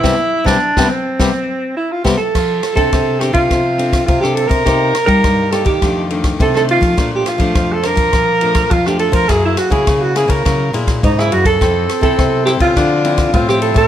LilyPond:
<<
  \new Staff \with { instrumentName = "Alto saxophone" } { \time 4/4 \key c \major \tempo 4 = 104 e'8. d'8. c'4. e'16 f'16 g'16 a'16~ | \key f \major a'8. a'8. g'16 f'4~ f'16 f'16 g'16 a'16 bes'16~ | bes'8. bes'8. a'16 g'8. r8 a'16 a'16 f'8~ | f'16 g'16 f'8. a'16 bes'4. f'16 g'16 a'16 bes'16 |
aes'16 fes'16 ges'16 aes'8 ges'16 aes'16 bes'8. r8 ees'16 fes'16 ges'16 a'16~ | a'8. a'8. g'16 f'4~ f'16 f'16 g'16 a'16 bes'16 | }
  \new Staff \with { instrumentName = "Tenor saxophone" } { \time 4/4 \key c \major r1 | \key f \major r1 | r1 | r1 |
r1 | c'2 d'4 c'4 | }
  \new Staff \with { instrumentName = "Nylon-string guitar" } { \time 4/4 \key c \major << { <g b c'>16 r8 <g b c'>16 r16 <g b c'>16 r8 <g b c'>16 r4 r16 <g b c'>16 r16 | \key f \major r8. <c' d' a'>8. <c' d' a'>8. r16 <c' d' a'>8 r16 <c' d' a'>8. | <bes ees' g'>8 r16 <bes ees' g'>8. <bes ees' g'>8 <ees a d'>8 <ees a d'>8. <ees a d'>8. | <f a d'>8. <f a d'>8. <f d'>4 <f a d'>8 r16 <f a d'>8. |
<bes fes' aes'>8. <bes fes' aes'>8. <bes fes' aes'>4 <bes fes' aes'>8. <bes fes' aes'>8. | <c' e' a'>8 r16 <c' e' a'>8. <c' e' a'>8 <f c' e'>8 <f c' e'>8 r16 <f c' e'>8. | } \\ { r1 | f4 c4 f4 c4 | c4 g,4 f,4 c4 | bes,4 f,4 bes,4 f,4 |
ges4 des4 ges4 des4 | f4 c4 d4 a,4 | } >> }
  \new Staff \with { instrumentName = "Nylon-string guitar" } { \clef bass \time 4/4 \key c \major c16 r8 c16 r16 c16 r8 c16 r4 r16 c16 r16 | \key f \major f8 r16 c16 c8. c16 c4 c8. c16 | c8 r16 g16 g8. ees16 f4 c8. f16 | bes,8 r16 f16 f8. f16 f4 f8. f16 |
ges,8 r16 des16 des8. des16 des8 bes,8 aes,8 ges,8 | f,8 r16 c16 c8. des16 d4 a,8. a,16 | }
  \new DrumStaff \with { instrumentName = "Drums" } \drummode { \time 4/4 <bd sn>8. <bd sn>16 r16 <bd sn>8. <bd sn>4 r8 <bd sn>8 | <cymc bd ss>8 <cymr ss>16 <bd cymr>16 <bd cymr ss>8 <cymr ss>16 <bd cymr>16 <bd cymr ss>8 cymr16 <bd cymr ss>16 <bd cymr>16 ss16 cymr16 <bd cymr>16 | <bd cymr ss>8 <cymr ss>16 <bd cymr>16 <bd cymr ss>8 <cymr ss>16 <bd cymr>16 <bd cymr ss>8 cymr16 <bd cymr ss>16 <bd cymr>16 ss16 cymr16 <bd cymr>16 | <bd cymr ss>8 <cymr ss>16 <bd cymr>16 <bd cymr ss>8 <cymr ss>16 <bd cymr>16 <bd cymr ss>8 cymr16 <bd cymr ss>16 <bd cymr>16 ss16 cymr16 <bd cymr>16 |
<bd cymr ss>8 <cymr ss>16 <bd cymr>16 <bd cymr ss>8 <cymr ss>16 <bd cymr>16 <bd cymr ss>8 cymr16 <bd cymr ss>16 <bd cymr>16 ss16 cymr16 <bd cymr>16 | <bd cymr ss>8 <cymr ss>16 <bd cymr>16 <bd cymr ss>8 <cymr ss>16 <bd cymr>16 <bd cymr ss>8 cymr16 <bd cymr ss>16 <bd cymr>16 ss16 cymr16 <bd cymr>16 | }
>>